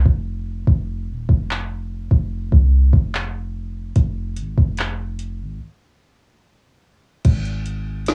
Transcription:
0.06 808-style bass F1, kick
0.67 808-style bass F1, kick
1.09 808-style bass D#1
1.29 808-style bass F1, kick
1.51 clap
2.11 808-style bass F1, kick
2.52 808-style bass C2, kick
2.93 808-style bass F1, kick
3.15 clap
3.96 808-style bass F1, kick, closed hi-hat
4.37 808-style bass G#1, closed hi-hat
4.58 808-style bass F1, kick
4.77 clap, closed hi-hat
5.19 closed hi-hat
5.40 808-style bass G#1
7.25 808-style bass G#1, kick, closed hi-hat, crash
7.45 closed hi-hat
7.66 closed hi-hat
8.06 snare, closed hi-hat

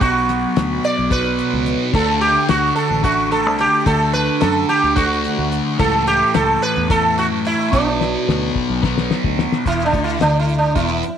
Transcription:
0.00 fingered electric bass B1, distorted electric guitar B2 F#3 B3, sitar F#4, kick, closed hi-hat
0.29 snare, closed hi-hat
0.56 fingered electric bass D2, snare, closed hi-hat
0.84 sitar D5, closed hi-hat
0.99 fingered electric bass B1
1.10 distorted electric guitar B2 F#3 B3, sitar B4, kick, closed hi-hat
1.39 closed hi-hat
1.53 fingered electric bass C#2
1.66 snare, closed hi-hat
1.93 fingered electric bass D2, distorted electric guitar D3 A3 D4, sitar A4, kick, crash
2.21 sitar G4, closed hi-hat
2.49 fingered electric bass D2, sitar F#4, snare, closed hi-hat
2.76 sitar A4, closed hi-hat
2.90 fingered electric bass A1
3.03 distorted electric guitar D3 A3 D4, sitar F#4, kick, closed hi-hat
3.32 sitar A4, snare, closed hi-hat
3.46 fingered electric bass C2
3.59 sitar G4, closed hi-hat
3.85 fingered electric bass D2, distorted electric guitar D3 A3 D4, sitar A4, kick, closed hi-hat
4.13 sitar B4, snare, closed hi-hat
4.41 fingered electric bass F#2, sitar A4, snare, closed hi-hat
4.69 sitar G4, snare, closed hi-hat
4.84 fingered electric bass D2
4.96 distorted electric guitar D3 A3 D4, sitar F#4, kick, closed hi-hat
5.24 closed hi-hat
5.38 fingered electric bass D2
5.52 closed hi-hat
5.79 fingered electric bass C#2, distorted electric guitar A2 E3 A3, sitar A4, kick, crash
6.07 sitar G4, closed hi-hat
6.34 fingered electric bass C#2, sitar A4, snare, closed hi-hat
6.62 sitar B4, closed hi-hat
6.77 fingered electric bass E2
6.89 distorted electric guitar A2 E3 A3, sitar A4, kick, closed hi-hat
7.18 sitar F#4, closed hi-hat
7.33 fingered electric bass F#2
7.45 sitar E4, closed hi-hat
7.72 fingered electric bass B1, distorted electric guitar B2 F#3 B3, sitar D4, kick, closed hi-hat
8.01 snare
8.28 fingered electric bass D2, snare
8.56 kick
8.70 fingered electric bass B1
8.82 distorted electric guitar B2 F#3 B3, kick, snare
8.98 snare
9.11 snare
9.24 fingered electric bass D2, kick
9.39 snare
9.52 snare
9.65 fingered electric bass E1, distorted electric guitar E2, sitar E4, kick, closed hi-hat
9.86 sitar D4
9.93 fingered electric bass D2, distorted electric guitar D3, kick, closed hi-hat
10.04 sitar E4
10.20 fingered electric bass D2, distorted electric guitar D3, sitar D4, snare, closed hi-hat
10.40 sitar E4
10.49 closed hi-hat
10.58 sitar D4
10.75 fingered electric bass E1, distorted electric guitar E2, sitar E4, kick, closed hi-hat
11.03 closed hi-hat

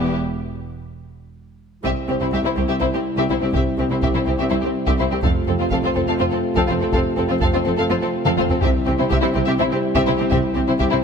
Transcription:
Already playing: double bass section E1, cello section E2, french horn section G3 B3, viola section B3, violin section G4 E5
1.83 double bass section C2, cello section C2, trombone section C3 G3, viola section C4, french horn section C4 E4, violin section G4 E5, taiko
2.07 double bass section C2, cello section C2, viola section C4, violin section C4 G4
2.20 cello section C2, viola section C4, violin section E4 C5
2.32 cello section C2, double bass section C2, viola section C4, violin section G4 E5
2.44 cello section C2, viola section C4, violin section E4 C5
2.56 double bass section C2, cello section C2, viola section C4, violin section C4 G4, taiko
2.68 cello section C2, viola section C4, violin section G4 E5
2.80 double bass section C2, cello section C2, viola section C4, violin section E4 C5
2.93 cello section C2, viola section C4, violin section C4 G4
3.17 cello section C2, viola section C4, violin section G4 E5
3.29 double bass section C2, cello section C2, viola section C4, violin section E4 C5
3.41 cello section C2, violin section C4 G4, viola section C4
3.54 cello section C2, double bass section C2, viola section C4, violin section G4 E5, taiko
3.78 double bass section C2, cello section C2, violin section C4 G4, viola section C4
3.90 cello section C2, viola section C4, violin section E4 C5
4.02 cello section C2, double bass section C2, viola section C4, violin section G4 E5, taiko
4.14 cello section C2, viola section C4, violin section E4 C5
4.26 double bass section C2, cello section C2, violin section C4 G4, viola section C4
4.38 cello section C2, viola section C4, violin section G4 E5
4.50 cello section C2, double bass section C2, viola section C4, violin section E4 C5
4.61 cello section C2, violin section C4 G4, viola section C4
4.86 cello section C2, viola section C4, violin section G4 E5, taiko
4.98 double bass section C2, cello section C2, viola section C4, violin section E4 C5
5.11 cello section C2, violin section C4 G4, viola section C4
5.22 double bass section F1, cello section F2, trombone section C3 A3, viola section C4, french horn section C4 F4, violin section A4 F5, taiko
5.48 double bass section F1, cello section F2, violin section C4 A4, viola section C4
5.60 cello section F2, viola section C4, violin section F4 C5
5.71 double bass section F1, cello section F2, viola section C4, violin section A4 F5, taiko
5.83 cello section F2, viola section C4, violin section F4 C5
5.95 double bass section F1, cello section F2, viola section C4, violin section C4 A4
6.07 cello section F2, viola section C4, violin section A4 F5
6.20 double bass section F1, cello section F2, viola section C4, violin section F4 C5
6.31 cello section F2, viola section C4, violin section C4 A4
6.55 cello section F2, viola section C4, violin section A4 F5, taiko
6.68 double bass section F1, cello section F2, viola section C4, violin section F4 C5
6.80 cello section F2, violin section C4 A4, viola section C4
6.92 double bass section F1, cello section F2, viola section C4, violin section A4 F5, taiko
7.17 double bass section F1, cello section F2, violin section C4 A4, viola section C4
7.28 cello section F2, viola section C4, violin section F4 C5
7.40 double bass section F1, cello section F2, viola section C4, violin section A4 F5, taiko
7.53 cello section F2, viola section C4, violin section F4 C5
7.65 double bass section F1, cello section F2, violin section C4 A4, viola section C4
7.76 cello section F2, viola section C4, violin section A4 F5
7.90 double bass section F1, cello section F2, viola section C4, violin section F4 C5
8.01 cello section F2, viola section C4, violin section C4 A4
8.25 cello section F2, viola section C4, violin section A4 F5, taiko mid
8.37 double bass section F1, cello section F2, viola section C4, violin section F4 C5, taiko mid
8.49 cello section F2, violin section C4 A4, viola section C4, taiko low
8.62 double bass section C2, trombone section C3 G3, cello section C3, french horn section C4 E4, viola section C4, violin section G4 E5, taiko
8.86 double bass section C2, cello section C3, violin section C4 G4, viola section C4
8.99 cello section C3, viola section C4, violin section E4 C5
9.09 double bass section C2, cello section C3, viola section C4, violin section G4 E5, taiko
9.22 cello section C3, viola section C4, violin section E4 C5
9.33 double bass section C2, cello section C3, violin section C4 G4, viola section C4
9.46 cello section C3, viola section C4, violin section G4 E5
9.59 double bass section C2, cello section C3, viola section C4, violin section E4 C5
9.70 cello section C3, viola section C4, violin section C4 G4
9.95 cello section C3, viola section C4, violin section G4 E5, taiko
10.06 double bass section C2, cello section C3, viola section C4, violin section E4 C5
10.18 cello section C3, violin section C4 G4, viola section C4
10.30 double bass section C2, cello section C3, viola section C4, violin section G4 E5, taiko
10.55 double bass section C2, cello section C3, violin section C4 G4, viola section C4
10.68 cello section C3, viola section C4, violin section E4 C5
10.79 double bass section C2, cello section C3, viola section C4, violin section G4 E5, taiko
10.91 cello section C3, viola section C4, violin section E4 C5

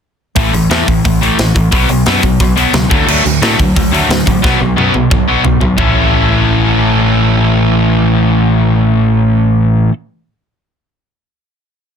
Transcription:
0.36 picked electric bass A1, distorted electric guitar A2 E3 A3, kick, open hi-hat
0.53 picked electric bass A1, distorted electric guitar A2 E3, open hi-hat
0.70 picked electric bass E2, distorted electric guitar A2 E3 A3, snare, open hi-hat
0.87 picked electric bass A1, distorted electric guitar A2 E3, kick, open hi-hat
1.05 picked electric bass A1, distorted electric guitar A2 E3, kick, open hi-hat
1.21 distorted electric guitar A2 E3 A3, open hi-hat
1.38 picked electric bass A1, distorted electric guitar A2 E3, snare, open hi-hat
1.55 picked electric bass A1, distorted electric guitar A2 E3, kick, open hi-hat
1.71 picked electric bass B1, distorted electric guitar B2 F#3 B3, kick, open hi-hat
1.89 picked electric bass B1, distorted electric guitar B2 F#3, open hi-hat
2.06 picked electric bass F#2, distorted electric guitar B2 F#3 B3, snare, open hi-hat
2.23 picked electric bass B1, distorted electric guitar B2 F#3, kick, open hi-hat
2.40 picked electric bass B1, distorted electric guitar B2 F#3, kick, open hi-hat
2.56 distorted electric guitar B2 F#3 B3, open hi-hat
2.73 picked electric bass C#2, distorted electric guitar B2 F#3, snare, open hi-hat
2.90 picked electric bass D2, distorted electric guitar D3 F#3 A3, kick, open hi-hat
3.07 picked electric bass D2, distorted electric guitar D3 F#3 A3, crash
3.24 picked electric bass D2, distorted electric guitar D3 F#3, open hi-hat
3.42 picked electric bass A2, distorted electric guitar D3 F#3 A3, snare, open hi-hat
3.59 picked electric bass D2, distorted electric guitar D3 F#3, kick, open hi-hat
3.76 picked electric bass D2, distorted electric guitar D3 F#3, kick, open hi-hat
3.92 distorted electric guitar D3 F#3 A3, open hi-hat
4.09 picked electric bass D2, distorted electric guitar D3 F#3, snare, open hi-hat
4.26 picked electric bass A1, distorted electric guitar D3 F#3, kick, open hi-hat
4.42 picked electric bass B1, distorted electric guitar B2 F#3 B3, kick, snare
4.60 picked electric bass B1, distorted electric guitar B2 F#3
4.76 picked electric bass F#2, distorted electric guitar B2 F#3 B3, high tom
4.94 picked electric bass B1, distorted electric guitar B2 F#3, high tom
5.10 picked electric bass B1, distorted electric guitar B2 F#3, kick, mid tom
5.28 distorted electric guitar B2 F#3 B3
5.45 picked electric bass B1, distorted electric guitar B2 F#3, floor tom
5.60 picked electric bass B1, distorted electric guitar B2 F#3, floor tom
5.77 picked electric bass A1, distorted electric guitar A2 E3 A3 C#4 E4 A4, kick, floor tom

